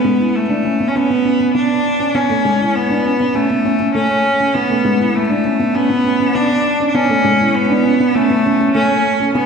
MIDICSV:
0, 0, Header, 1, 3, 480
1, 0, Start_track
1, 0, Key_signature, 3, "major"
1, 0, Tempo, 600000
1, 760, Time_signature, 4, 2, 24, 8
1, 7567, End_track
2, 0, Start_track
2, 0, Title_t, "Felt piano"
2, 0, Program_c, 0, 0
2, 36, Note_on_c, 0, 56, 73
2, 121, Note_off_c, 0, 56, 0
2, 155, Note_on_c, 0, 64, 69
2, 323, Note_off_c, 0, 64, 0
2, 395, Note_on_c, 0, 62, 69
2, 480, Note_off_c, 0, 62, 0
2, 517, Note_on_c, 0, 61, 75
2, 601, Note_off_c, 0, 61, 0
2, 642, Note_on_c, 0, 59, 71
2, 725, Note_off_c, 0, 59, 0
2, 762, Note_on_c, 0, 61, 88
2, 844, Note_off_c, 0, 61, 0
2, 881, Note_on_c, 0, 59, 69
2, 964, Note_off_c, 0, 59, 0
2, 1000, Note_on_c, 0, 61, 73
2, 1084, Note_off_c, 0, 61, 0
2, 1121, Note_on_c, 0, 61, 71
2, 1204, Note_off_c, 0, 61, 0
2, 1237, Note_on_c, 0, 59, 77
2, 1405, Note_off_c, 0, 59, 0
2, 1598, Note_on_c, 0, 61, 70
2, 1682, Note_off_c, 0, 61, 0
2, 1718, Note_on_c, 0, 59, 86
2, 1802, Note_off_c, 0, 59, 0
2, 1838, Note_on_c, 0, 57, 65
2, 1922, Note_off_c, 0, 57, 0
2, 1960, Note_on_c, 0, 56, 80
2, 2043, Note_off_c, 0, 56, 0
2, 2081, Note_on_c, 0, 64, 65
2, 2247, Note_off_c, 0, 64, 0
2, 2320, Note_on_c, 0, 62, 68
2, 2403, Note_off_c, 0, 62, 0
2, 2437, Note_on_c, 0, 61, 67
2, 2522, Note_off_c, 0, 61, 0
2, 2559, Note_on_c, 0, 59, 67
2, 2642, Note_off_c, 0, 59, 0
2, 2679, Note_on_c, 0, 61, 84
2, 2763, Note_off_c, 0, 61, 0
2, 2800, Note_on_c, 0, 59, 66
2, 2884, Note_off_c, 0, 59, 0
2, 2920, Note_on_c, 0, 61, 77
2, 3003, Note_off_c, 0, 61, 0
2, 3039, Note_on_c, 0, 61, 69
2, 3122, Note_off_c, 0, 61, 0
2, 3157, Note_on_c, 0, 57, 80
2, 3325, Note_off_c, 0, 57, 0
2, 3520, Note_on_c, 0, 61, 67
2, 3603, Note_off_c, 0, 61, 0
2, 3638, Note_on_c, 0, 59, 86
2, 3722, Note_off_c, 0, 59, 0
2, 3760, Note_on_c, 0, 57, 70
2, 3843, Note_off_c, 0, 57, 0
2, 3878, Note_on_c, 0, 56, 80
2, 3962, Note_off_c, 0, 56, 0
2, 3998, Note_on_c, 0, 64, 69
2, 4165, Note_off_c, 0, 64, 0
2, 4238, Note_on_c, 0, 62, 66
2, 4322, Note_off_c, 0, 62, 0
2, 4359, Note_on_c, 0, 61, 69
2, 4443, Note_off_c, 0, 61, 0
2, 4477, Note_on_c, 0, 59, 75
2, 4561, Note_off_c, 0, 59, 0
2, 4598, Note_on_c, 0, 61, 84
2, 4682, Note_off_c, 0, 61, 0
2, 4718, Note_on_c, 0, 59, 70
2, 4802, Note_off_c, 0, 59, 0
2, 4838, Note_on_c, 0, 61, 73
2, 4922, Note_off_c, 0, 61, 0
2, 4958, Note_on_c, 0, 61, 73
2, 5042, Note_off_c, 0, 61, 0
2, 5080, Note_on_c, 0, 59, 76
2, 5247, Note_off_c, 0, 59, 0
2, 5440, Note_on_c, 0, 61, 68
2, 5523, Note_off_c, 0, 61, 0
2, 5556, Note_on_c, 0, 59, 90
2, 5641, Note_off_c, 0, 59, 0
2, 5675, Note_on_c, 0, 57, 73
2, 5760, Note_off_c, 0, 57, 0
2, 5796, Note_on_c, 0, 56, 83
2, 5881, Note_off_c, 0, 56, 0
2, 5917, Note_on_c, 0, 64, 73
2, 6085, Note_off_c, 0, 64, 0
2, 6158, Note_on_c, 0, 62, 71
2, 6242, Note_off_c, 0, 62, 0
2, 6281, Note_on_c, 0, 61, 73
2, 6364, Note_off_c, 0, 61, 0
2, 6400, Note_on_c, 0, 59, 69
2, 6483, Note_off_c, 0, 59, 0
2, 6521, Note_on_c, 0, 61, 93
2, 6604, Note_off_c, 0, 61, 0
2, 6641, Note_on_c, 0, 59, 75
2, 6724, Note_off_c, 0, 59, 0
2, 6763, Note_on_c, 0, 61, 80
2, 6845, Note_off_c, 0, 61, 0
2, 6881, Note_on_c, 0, 61, 76
2, 6964, Note_off_c, 0, 61, 0
2, 6998, Note_on_c, 0, 57, 86
2, 7166, Note_off_c, 0, 57, 0
2, 7358, Note_on_c, 0, 61, 81
2, 7442, Note_off_c, 0, 61, 0
2, 7480, Note_on_c, 0, 59, 96
2, 7563, Note_off_c, 0, 59, 0
2, 7567, End_track
3, 0, Start_track
3, 0, Title_t, "Cello"
3, 0, Program_c, 1, 42
3, 0, Note_on_c, 1, 59, 86
3, 282, Note_on_c, 1, 57, 84
3, 294, Note_off_c, 1, 59, 0
3, 701, Note_on_c, 1, 61, 69
3, 713, Note_off_c, 1, 57, 0
3, 764, Note_on_c, 1, 59, 98
3, 776, Note_off_c, 1, 61, 0
3, 1237, Note_off_c, 1, 59, 0
3, 1242, Note_on_c, 1, 62, 88
3, 1720, Note_on_c, 1, 61, 93
3, 1732, Note_off_c, 1, 62, 0
3, 2197, Note_on_c, 1, 59, 88
3, 2209, Note_off_c, 1, 61, 0
3, 2681, Note_on_c, 1, 57, 83
3, 2693, Note_off_c, 1, 59, 0
3, 3152, Note_off_c, 1, 57, 0
3, 3157, Note_on_c, 1, 61, 86
3, 3635, Note_on_c, 1, 59, 83
3, 3647, Note_off_c, 1, 61, 0
3, 4119, Note_on_c, 1, 57, 80
3, 4131, Note_off_c, 1, 59, 0
3, 4600, Note_on_c, 1, 59, 93
3, 4612, Note_off_c, 1, 57, 0
3, 5077, Note_on_c, 1, 62, 94
3, 5089, Note_off_c, 1, 59, 0
3, 5495, Note_off_c, 1, 62, 0
3, 5500, Note_on_c, 1, 62, 72
3, 5555, Note_on_c, 1, 61, 98
3, 5567, Note_off_c, 1, 62, 0
3, 6037, Note_on_c, 1, 59, 91
3, 6049, Note_off_c, 1, 61, 0
3, 6516, Note_on_c, 1, 57, 96
3, 6528, Note_off_c, 1, 59, 0
3, 6994, Note_off_c, 1, 57, 0
3, 6999, Note_on_c, 1, 61, 90
3, 7447, Note_off_c, 1, 61, 0
3, 7475, Note_on_c, 1, 59, 87
3, 7567, Note_off_c, 1, 59, 0
3, 7567, End_track
0, 0, End_of_file